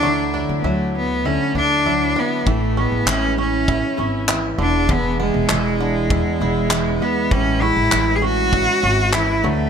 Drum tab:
CP |--------|--x---x-|--x---x-|--x---x-|
BD |--------|o---o---|o---o---|o---o---|